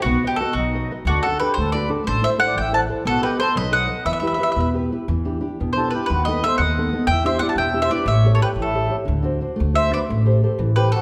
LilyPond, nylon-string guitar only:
\new Staff \with { instrumentName = "Nylon-string guitar" } { \time 6/8 \key e \minor \tempo 4. = 120 b8 <fis' b' dis''>8 <fis' b' dis''>8 fis8 <fis' b' dis''>8 <fis' b' dis''>8 | d8 <d' fis' a'>8 <d' fis' a'>8 a8 <d' fis' a'>8 <d' fis' a'>8 | a8 <e' a' c''>8 <e' a' c''>8 e8 <e' a' c''>8 <e' a' c''>8 | b8 <a' b' dis''>8 <a' b' dis''>8 fis8 <a' b'>8 <a' b' dis''>8 |
e8 <e' g' b'>8 <e' g' b'>8 b,8 <e' g' b'>8 <e' g' b'>8 | e8 <d' e' g'>8 <d' e' g'>8 b,8 <d' e' g'>8 <d' e' g'>8 | dis8 <b dis' a'>8 <b dis' a'>8 dis8 <b dis' a'>8 <b dis' a'>8 | e8 <d' e' g'>8 <d' e' g'>8 b,8 <d' e' g'>8 <d' e' g'>8 |
a8 <g' a' cis''>8 <g' a' cis''>8 e8 <g' a' cis''>8 <g' a' cis''>8 | d8 <d' fis' c''>8 <d' fis' c''>8 a8 <d' fis' c''>8 <d' fis' c''>8 | a8 <g' a' c''>8 <g' a' c''>8 e8 <g' a' c''>8 <g' a' c''>8 | }